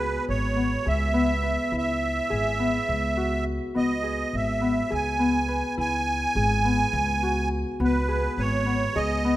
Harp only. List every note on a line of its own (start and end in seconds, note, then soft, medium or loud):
0.00 0.56 B3 medium
0.00 0.29 E4 medium
0.00 1.56 F#4 medium
0.00 0.85 G#4 medium
0.56 1.13 B3 medium
0.86 2.30 G#4 medium
1.14 2.59 B3 medium
1.43 3.48 B4 medium
1.72 4.33 E4 medium
2.30 4.03 G#4 medium
2.59 3.74 B3 medium
3.17 5.61 F#4 medium
3.75 4.61 B3 medium
4.03 4.90 G#4 medium
4.61 5.19 B3 medium
4.90 6.36 G#4 medium
5.19 6.64 B3 medium
5.48 7.53 B4 medium
5.78 8.39 E4 medium
6.36 8.08 G#4 medium
6.65 7.80 B3 medium
7.23 9.37 F#4 medium
7.80 8.66 B3 medium
8.08 8.95 G#4 medium
8.66 9.24 B3 medium
8.96 9.37 G#4 medium
9.25 9.37 B3 medium